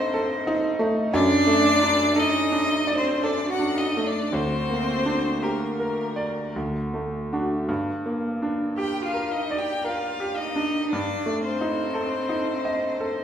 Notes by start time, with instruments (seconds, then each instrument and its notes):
Already playing: grand piano G2 A3 D#4 A4 D#5, cello C4, violin C5
0.14 grand piano A4
0.47 grand piano D#4
0.79 grand piano A3
1.11 grand piano F#2, cello D4, violin D5
1.47 grand piano A3
1.82 grand piano D4
2.15 cello D#4, grand piano A4
2.19 violin D#5
2.52 grand piano D4
2.87 grand piano D5
2.95 cello C4, violin C5
3.20 cello D4, grand piano A4, violin D5
3.47 cello F#4
3.52 violin F#5
3.59 grand piano D4
3.74 cello D#4
3.78 violin D#5
3.97 grand piano A3
4.03 cello D4, violin D5
4.30 grand piano D2, cello C4
4.34 violin C5
4.70 grand piano A#3
5.06 grand piano D4
5.41 cello A#3, grand piano G4, violin A#4
5.79 grand piano A#4
6.16 grand piano D5
6.56 grand piano D2
6.94 grand piano A3
7.33 grand piano D4 F#4
7.68 grand piano G2
8.06 grand piano A#3
8.42 grand piano D4
8.76 cello G4, grand piano G4, violin G5
9.02 cello F4, violin F5
9.14 grand piano A#4
9.31 cello D#4, violin D#5
9.50 grand piano D5
9.56 cello G4, violin G5
9.84 cello F4, grand piano A#4, violin F5
10.20 grand piano G4
10.36 cello D#4, violin D#5
10.56 grand piano D4
10.89 cello D4, violin D5
10.93 grand piano G2
11.26 grand piano A3
11.42 cello C4, violin C5
11.61 grand piano D#4
11.94 grand piano A4
12.29 grand piano D#4
12.65 grand piano D#5
13.00 grand piano A4